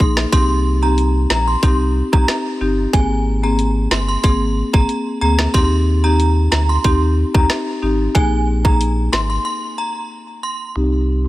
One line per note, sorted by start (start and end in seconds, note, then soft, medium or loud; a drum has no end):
0.00 0.26 A#1 medium
0.00 0.30 A#3 medium
0.00 0.30 D#4 medium
0.00 0.30 G#4 medium
0.00 0.15 C6 medium
0.00 kick medium
0.17 cross-stick medium
0.17 snare loud
0.32 1.26 C2 loud
0.32 0.78 C4 loud
0.32 0.78 D#4 medium
0.32 0.79 G4 loud
0.32 0.47 C6 loud
0.32 kick loud
0.32 closed hi-hat medium
0.82 1.03 C4 medium
0.82 1.03 D#4 medium
0.82 1.03 G4 medium
0.82 0.96 A#5 medium
0.98 closed hi-hat medium
1.30 1.56 A#1 loud
1.30 1.45 A#5 medium
1.30 cross-stick medium
1.30 snare loud
1.48 1.61 C6 medium
1.63 2.02 C2 loud
1.63 1.85 C4 loud
1.63 1.85 D#4 medium
1.63 1.85 G4 loud
1.63 1.78 C6 medium
1.63 kick medium
1.63 closed hi-hat medium
2.13 2.25 C2 loud
2.13 2.57 C4 medium
2.13 2.57 D#4 medium
2.13 2.57 G4 medium
2.13 2.26 A#5 medium
2.13 kick loud
2.28 cross-stick loud
2.28 snare loud
2.28 closed hi-hat medium
2.61 2.86 G1 medium
2.61 2.91 C4 medium
2.61 2.91 D#4 medium
2.61 2.91 G4 medium
2.93 3.87 G#1 loud
2.93 3.39 A#3 medium
2.93 3.39 C4 medium
2.93 3.39 G#4 loud
2.93 3.08 G#5 loud
2.93 kick loud
2.93 closed hi-hat medium
3.43 3.64 A#3 medium
3.43 3.64 C4 medium
3.43 3.64 G#4 medium
3.43 3.57 A#5 medium
3.59 closed hi-hat medium
3.91 4.17 G1 loud
3.91 4.06 C6 medium
3.91 cross-stick medium
3.91 snare loud
4.08 4.22 C6 medium
4.23 4.63 G#1 loud
4.23 4.46 A#3 loud
4.23 4.46 C4 medium
4.23 4.46 G#4 loud
4.23 4.38 C6 medium
4.23 kick medium
4.23 closed hi-hat medium
4.73 4.86 G#1 medium
4.73 5.18 A#3 medium
4.73 5.18 C4 medium
4.73 5.18 G#4 medium
4.73 4.87 A#5 medium
4.73 kick loud
4.89 closed hi-hat medium
5.21 5.47 D2 loud
5.21 5.52 A#3 medium
5.21 5.52 C4 medium
5.21 5.52 G#4 medium
5.21 5.36 A#5 medium
5.38 cross-stick medium
5.38 snare loud
5.54 6.48 D#2 loud
5.54 6.00 C4 medium
5.54 6.00 D#4 medium
5.54 6.00 G4 loud
5.54 5.69 C6 loud
5.54 kick loud
5.54 closed hi-hat medium
6.04 6.24 C4 medium
6.04 6.24 D#4 medium
6.04 6.25 G4 medium
6.04 6.17 A#5 medium
6.20 closed hi-hat medium
6.52 6.78 D2 loud
6.52 6.67 A#5 medium
6.52 cross-stick medium
6.52 snare loud
6.69 6.82 C6 medium
6.84 7.24 D#2 loud
6.84 7.06 C4 loud
6.84 7.06 D#4 medium
6.84 7.07 G4 loud
6.84 6.99 C6 medium
6.84 kick medium
6.84 closed hi-hat medium
7.34 7.47 D#2 medium
7.34 7.79 C4 medium
7.34 7.79 D#4 medium
7.34 7.79 G4 medium
7.34 7.48 A#5 medium
7.34 kick loud
7.50 cross-stick loud
7.50 snare loud
7.50 closed hi-hat medium
7.82 8.08 G#1 loud
7.82 8.13 C4 medium
7.82 8.13 D#4 medium
7.82 8.13 G4 medium
8.15 9.09 A#1 loud
8.15 8.61 A#3 loud
8.15 8.61 D#4 medium
8.15 8.61 G#4 loud
8.15 8.30 G#5 loud
8.15 kick loud
8.15 closed hi-hat medium
8.65 8.85 A#3 medium
8.65 8.85 D#4 medium
8.65 8.85 G#4 medium
8.65 8.78 A#5 medium
8.65 kick medium
8.81 closed hi-hat medium
9.13 9.39 G#1 medium
9.13 9.28 C6 medium
9.13 cross-stick medium
9.13 snare loud
9.30 9.43 C6 medium
9.45 9.60 C6 loud
9.78 9.93 A#5 medium
10.43 10.58 C6 medium
10.76 11.28 C2 loud
10.76 11.22 C4 medium
10.76 11.22 D#4 medium
10.76 11.22 G4 medium
10.76 10.91 D#6 medium
11.09 11.23 C6 medium